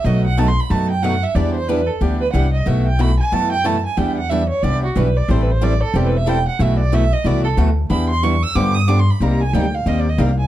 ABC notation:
X:1
M:4/4
L:1/8
Q:"Swing" 1/4=184
K:Em
V:1 name="Violin"
^d f (3a c' b a g f e | d c B A G B f ^d | e g b ^g a =g a ^g | g f e ^c d F B d |
(3c B c d A (3G B e g f | e d e ^d =d A z2 | b c' ^c' e' d' ^d' (3=d' =c' b | [K:Cm] b a g f (3e d e f a |]
V:2 name="Steel-string acoustic guitar"
[B,,F,A,^DFB] z [B,,F,A,DFB] z [B,,F,A,DFB] z [B,,F,A,DFB] z | [E,G,DEB] z [E,G,DEB] z [E,G,DEB] z [E,G,DEB] z | [B,,E,A,EFB] z [B,,E,A,EFB] z [B,,E,A,EFB] z [B,,E,A,EFB] z | [E,G,DEB] z [E,G,DEB] z [E,G,DEB] z [E,G,DEB] z |
[E,G,CEA] z [E,G,CEA] z [E,G,CEA] z [E,G,CEA] z | [B,,E,A,EFB] z [B,,E,A,EFB] z [B,,E,A,EFB] z [B,,E,A,EFB] z | [E,G,DEB] z [E,G,DEB] z [D,=F,B,DG] z [D,F,B,DG] z | [K:Cm] [C,G,B,EG] z [C,G,B,EG] z [C,G,B,EG] z [C,G,B,EG] z |]
V:3 name="Steel-string acoustic guitar"
[B,,F,A,^DF] z [B,,F,A,DF] z [B,,F,A,DF] z [B,,F,A,DF] z | [E,B,DG] z [E,B,DG] z [E,B,DG] z [E,B,DG] z | [B,,E,A,EF] z [B,,E,A,EF] z [B,,E,A,EF] z [B,,E,A,EF] z | [E,B,DG] z [E,B,DG] z [E,B,DG] z [E,B,DG] z |
[E,G,CEA] z [E,G,CEA] z [E,G,CEA] z [E,G,CEA] z | [B,,E,A,EF] z [B,,E,A,EF] z [B,,E,A,EF] z [B,,E,A,EF] z | [E,B,DG] z [E,B,DG] z [D,=F,B,DG] z [D,F,B,DG] z | [K:Cm] [C,G,B,EG] z [C,G,B,EG] z [C,G,B,EG] z [C,G,B,EG] z |]
V:4 name="Upright bass" clef=bass
B,,,4 F,,4 | E,,4 D,,2 C,,2 | B,,,4 F,,4 | E,,4 C,,2 B,,,2 |
A,,,4 E,,,4 | B,,,4 C,,2 D,,2 | E,,4 G,,4 | [K:Cm] C,,2 D,,2 E,,2 C,,2 |]